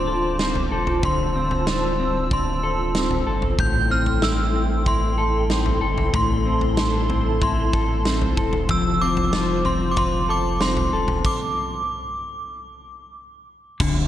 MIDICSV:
0, 0, Header, 1, 6, 480
1, 0, Start_track
1, 0, Key_signature, -1, "minor"
1, 0, Tempo, 638298
1, 776, Time_signature, 4, 2, 24, 8
1, 10586, End_track
2, 0, Start_track
2, 0, Title_t, "Synth bell"
2, 0, Program_c, 0, 98
2, 0, Note_on_c, 0, 84, 84
2, 781, Note_off_c, 0, 84, 0
2, 791, Note_on_c, 0, 84, 79
2, 1745, Note_off_c, 0, 84, 0
2, 1754, Note_on_c, 0, 84, 68
2, 2435, Note_off_c, 0, 84, 0
2, 2706, Note_on_c, 0, 91, 93
2, 2943, Note_on_c, 0, 89, 86
2, 2948, Note_off_c, 0, 91, 0
2, 3163, Note_off_c, 0, 89, 0
2, 3183, Note_on_c, 0, 88, 84
2, 3666, Note_on_c, 0, 84, 82
2, 3674, Note_off_c, 0, 88, 0
2, 4621, Note_off_c, 0, 84, 0
2, 4630, Note_on_c, 0, 84, 76
2, 5576, Note_off_c, 0, 84, 0
2, 5585, Note_on_c, 0, 84, 68
2, 6270, Note_off_c, 0, 84, 0
2, 6547, Note_on_c, 0, 88, 102
2, 6779, Note_on_c, 0, 86, 90
2, 6788, Note_off_c, 0, 88, 0
2, 7261, Note_on_c, 0, 84, 72
2, 7272, Note_off_c, 0, 86, 0
2, 7451, Note_off_c, 0, 84, 0
2, 7455, Note_on_c, 0, 86, 63
2, 7502, Note_off_c, 0, 86, 0
2, 7504, Note_on_c, 0, 84, 90
2, 7723, Note_off_c, 0, 84, 0
2, 7747, Note_on_c, 0, 86, 85
2, 7982, Note_on_c, 0, 84, 83
2, 7989, Note_off_c, 0, 86, 0
2, 8467, Note_on_c, 0, 86, 77
2, 8473, Note_off_c, 0, 84, 0
2, 9871, Note_off_c, 0, 86, 0
2, 10586, End_track
3, 0, Start_track
3, 0, Title_t, "Analog synth pad"
3, 0, Program_c, 1, 89
3, 0, Note_on_c, 1, 65, 81
3, 0, Note_on_c, 1, 72, 74
3, 0, Note_on_c, 1, 81, 71
3, 0, Note_on_c, 1, 86, 93
3, 742, Note_off_c, 1, 86, 0
3, 771, Note_on_c, 1, 88, 92
3, 2662, Note_off_c, 1, 65, 0
3, 2668, Note_off_c, 1, 81, 0
3, 2669, Note_off_c, 1, 72, 0
3, 2674, Note_off_c, 1, 88, 0
3, 2697, Note_on_c, 1, 69, 75
3, 2698, Note_on_c, 1, 64, 82
3, 2698, Note_on_c, 1, 84, 90
3, 2699, Note_on_c, 1, 79, 69
3, 4598, Note_off_c, 1, 79, 0
3, 4605, Note_on_c, 1, 81, 71
3, 6506, Note_off_c, 1, 69, 0
3, 6507, Note_off_c, 1, 64, 0
3, 6537, Note_on_c, 1, 72, 75
3, 6540, Note_on_c, 1, 65, 86
3, 8421, Note_off_c, 1, 81, 0
3, 8427, Note_off_c, 1, 84, 0
3, 8437, Note_off_c, 1, 72, 0
3, 8439, Note_off_c, 1, 65, 0
3, 10375, Note_on_c, 1, 76, 79
3, 10375, Note_on_c, 1, 84, 97
3, 10377, Note_on_c, 1, 74, 79
3, 10378, Note_on_c, 1, 53, 83
3, 10586, Note_off_c, 1, 53, 0
3, 10586, Note_off_c, 1, 74, 0
3, 10586, Note_off_c, 1, 76, 0
3, 10586, Note_off_c, 1, 84, 0
3, 10586, End_track
4, 0, Start_track
4, 0, Title_t, "Clean electric guitar"
4, 0, Program_c, 2, 27
4, 0, Note_on_c, 2, 50, 65
4, 0, Note_on_c, 2, 60, 56
4, 0, Note_on_c, 2, 62, 59
4, 57, Note_on_c, 2, 69, 62
4, 296, Note_off_c, 2, 60, 0
4, 299, Note_on_c, 2, 60, 59
4, 535, Note_off_c, 2, 69, 0
4, 538, Note_on_c, 2, 69, 56
4, 771, Note_off_c, 2, 50, 0
4, 780, Note_on_c, 2, 50, 71
4, 1016, Note_off_c, 2, 60, 0
4, 1019, Note_on_c, 2, 60, 54
4, 1250, Note_off_c, 2, 62, 0
4, 1259, Note_on_c, 2, 62, 54
4, 1497, Note_off_c, 2, 60, 0
4, 1500, Note_on_c, 2, 60, 50
4, 1729, Note_off_c, 2, 62, 0
4, 1738, Note_on_c, 2, 62, 54
4, 1977, Note_off_c, 2, 69, 0
4, 1980, Note_on_c, 2, 69, 58
4, 2216, Note_off_c, 2, 60, 0
4, 2219, Note_on_c, 2, 60, 57
4, 2453, Note_off_c, 2, 69, 0
4, 2456, Note_on_c, 2, 69, 55
4, 2698, Note_off_c, 2, 50, 0
4, 2698, Note_on_c, 2, 45, 70
4, 2745, Note_off_c, 2, 62, 0
4, 2934, Note_off_c, 2, 60, 0
4, 2937, Note_on_c, 2, 60, 59
4, 3177, Note_on_c, 2, 64, 54
4, 3413, Note_off_c, 2, 60, 0
4, 3416, Note_on_c, 2, 60, 54
4, 3646, Note_off_c, 2, 64, 0
4, 3655, Note_on_c, 2, 64, 55
4, 3891, Note_off_c, 2, 69, 0
4, 3894, Note_on_c, 2, 69, 59
4, 4130, Note_off_c, 2, 60, 0
4, 4133, Note_on_c, 2, 60, 59
4, 4367, Note_off_c, 2, 69, 0
4, 4370, Note_on_c, 2, 69, 63
4, 4602, Note_off_c, 2, 45, 0
4, 4611, Note_on_c, 2, 45, 71
4, 4850, Note_off_c, 2, 60, 0
4, 4853, Note_on_c, 2, 60, 59
4, 5086, Note_off_c, 2, 64, 0
4, 5095, Note_on_c, 2, 64, 58
4, 5332, Note_off_c, 2, 60, 0
4, 5335, Note_on_c, 2, 60, 56
4, 5566, Note_off_c, 2, 64, 0
4, 5575, Note_on_c, 2, 64, 58
4, 5812, Note_off_c, 2, 69, 0
4, 5815, Note_on_c, 2, 69, 61
4, 6053, Note_off_c, 2, 60, 0
4, 6056, Note_on_c, 2, 60, 59
4, 6292, Note_off_c, 2, 69, 0
4, 6295, Note_on_c, 2, 69, 60
4, 6533, Note_off_c, 2, 45, 0
4, 6538, Note_on_c, 2, 53, 76
4, 6583, Note_off_c, 2, 64, 0
4, 6778, Note_off_c, 2, 60, 0
4, 6781, Note_on_c, 2, 60, 58
4, 7018, Note_on_c, 2, 65, 57
4, 7254, Note_off_c, 2, 60, 0
4, 7257, Note_on_c, 2, 60, 59
4, 7493, Note_off_c, 2, 65, 0
4, 7496, Note_on_c, 2, 65, 62
4, 7735, Note_off_c, 2, 69, 0
4, 7738, Note_on_c, 2, 69, 63
4, 7976, Note_off_c, 2, 60, 0
4, 7979, Note_on_c, 2, 60, 59
4, 8216, Note_off_c, 2, 69, 0
4, 8219, Note_on_c, 2, 69, 62
4, 8881, Note_off_c, 2, 53, 0
4, 8881, Note_off_c, 2, 60, 0
4, 8881, Note_off_c, 2, 65, 0
4, 8881, Note_off_c, 2, 69, 0
4, 10376, Note_on_c, 2, 50, 79
4, 10586, Note_off_c, 2, 50, 0
4, 10586, End_track
5, 0, Start_track
5, 0, Title_t, "Sub bass"
5, 0, Program_c, 3, 38
5, 0, Note_on_c, 3, 26, 96
5, 508, Note_off_c, 3, 26, 0
5, 539, Note_on_c, 3, 28, 80
5, 765, Note_off_c, 3, 28, 0
5, 776, Note_on_c, 3, 26, 113
5, 2426, Note_off_c, 3, 26, 0
5, 2456, Note_on_c, 3, 31, 83
5, 2684, Note_off_c, 3, 31, 0
5, 2696, Note_on_c, 3, 33, 105
5, 4346, Note_off_c, 3, 33, 0
5, 4373, Note_on_c, 3, 31, 86
5, 4615, Note_on_c, 3, 33, 95
5, 4626, Note_off_c, 3, 31, 0
5, 6265, Note_off_c, 3, 33, 0
5, 6297, Note_on_c, 3, 28, 85
5, 6525, Note_off_c, 3, 28, 0
5, 6537, Note_on_c, 3, 29, 96
5, 8186, Note_off_c, 3, 29, 0
5, 8217, Note_on_c, 3, 28, 78
5, 8444, Note_off_c, 3, 28, 0
5, 10377, Note_on_c, 3, 26, 102
5, 10586, Note_off_c, 3, 26, 0
5, 10586, End_track
6, 0, Start_track
6, 0, Title_t, "Drums"
6, 296, Note_on_c, 9, 38, 82
6, 371, Note_off_c, 9, 38, 0
6, 416, Note_on_c, 9, 43, 54
6, 492, Note_off_c, 9, 43, 0
6, 654, Note_on_c, 9, 43, 56
6, 729, Note_off_c, 9, 43, 0
6, 776, Note_on_c, 9, 36, 92
6, 776, Note_on_c, 9, 43, 97
6, 851, Note_off_c, 9, 43, 0
6, 852, Note_off_c, 9, 36, 0
6, 1135, Note_on_c, 9, 43, 58
6, 1210, Note_off_c, 9, 43, 0
6, 1256, Note_on_c, 9, 38, 99
6, 1331, Note_off_c, 9, 38, 0
6, 1738, Note_on_c, 9, 36, 86
6, 1739, Note_on_c, 9, 43, 63
6, 1814, Note_off_c, 9, 36, 0
6, 1814, Note_off_c, 9, 43, 0
6, 2217, Note_on_c, 9, 38, 93
6, 2293, Note_off_c, 9, 38, 0
6, 2336, Note_on_c, 9, 43, 58
6, 2411, Note_off_c, 9, 43, 0
6, 2573, Note_on_c, 9, 43, 57
6, 2648, Note_off_c, 9, 43, 0
6, 2697, Note_on_c, 9, 36, 100
6, 2697, Note_on_c, 9, 43, 97
6, 2772, Note_off_c, 9, 36, 0
6, 2772, Note_off_c, 9, 43, 0
6, 3055, Note_on_c, 9, 43, 63
6, 3131, Note_off_c, 9, 43, 0
6, 3175, Note_on_c, 9, 38, 106
6, 3250, Note_off_c, 9, 38, 0
6, 3655, Note_on_c, 9, 43, 57
6, 3657, Note_on_c, 9, 36, 85
6, 3730, Note_off_c, 9, 43, 0
6, 3732, Note_off_c, 9, 36, 0
6, 4135, Note_on_c, 9, 38, 87
6, 4211, Note_off_c, 9, 38, 0
6, 4254, Note_on_c, 9, 43, 56
6, 4330, Note_off_c, 9, 43, 0
6, 4494, Note_on_c, 9, 43, 59
6, 4569, Note_off_c, 9, 43, 0
6, 4615, Note_on_c, 9, 36, 102
6, 4616, Note_on_c, 9, 43, 106
6, 4690, Note_off_c, 9, 36, 0
6, 4692, Note_off_c, 9, 43, 0
6, 4973, Note_on_c, 9, 43, 59
6, 5048, Note_off_c, 9, 43, 0
6, 5093, Note_on_c, 9, 38, 105
6, 5169, Note_off_c, 9, 38, 0
6, 5337, Note_on_c, 9, 43, 60
6, 5412, Note_off_c, 9, 43, 0
6, 5577, Note_on_c, 9, 36, 79
6, 5577, Note_on_c, 9, 43, 60
6, 5652, Note_off_c, 9, 36, 0
6, 5653, Note_off_c, 9, 43, 0
6, 5816, Note_on_c, 9, 36, 86
6, 5891, Note_off_c, 9, 36, 0
6, 6057, Note_on_c, 9, 38, 89
6, 6132, Note_off_c, 9, 38, 0
6, 6178, Note_on_c, 9, 43, 55
6, 6253, Note_off_c, 9, 43, 0
6, 6297, Note_on_c, 9, 36, 80
6, 6372, Note_off_c, 9, 36, 0
6, 6413, Note_on_c, 9, 43, 58
6, 6488, Note_off_c, 9, 43, 0
6, 6535, Note_on_c, 9, 43, 104
6, 6536, Note_on_c, 9, 36, 108
6, 6610, Note_off_c, 9, 43, 0
6, 6612, Note_off_c, 9, 36, 0
6, 6895, Note_on_c, 9, 43, 65
6, 6970, Note_off_c, 9, 43, 0
6, 7016, Note_on_c, 9, 38, 103
6, 7091, Note_off_c, 9, 38, 0
6, 7256, Note_on_c, 9, 43, 62
6, 7332, Note_off_c, 9, 43, 0
6, 7494, Note_on_c, 9, 43, 61
6, 7497, Note_on_c, 9, 36, 87
6, 7569, Note_off_c, 9, 43, 0
6, 7573, Note_off_c, 9, 36, 0
6, 7976, Note_on_c, 9, 38, 85
6, 8051, Note_off_c, 9, 38, 0
6, 8097, Note_on_c, 9, 43, 62
6, 8172, Note_off_c, 9, 43, 0
6, 8331, Note_on_c, 9, 43, 63
6, 8407, Note_off_c, 9, 43, 0
6, 8457, Note_on_c, 9, 36, 90
6, 8458, Note_on_c, 9, 49, 74
6, 8532, Note_off_c, 9, 36, 0
6, 8534, Note_off_c, 9, 49, 0
6, 10378, Note_on_c, 9, 36, 116
6, 10378, Note_on_c, 9, 43, 117
6, 10378, Note_on_c, 9, 49, 104
6, 10453, Note_off_c, 9, 36, 0
6, 10453, Note_off_c, 9, 43, 0
6, 10453, Note_off_c, 9, 49, 0
6, 10586, End_track
0, 0, End_of_file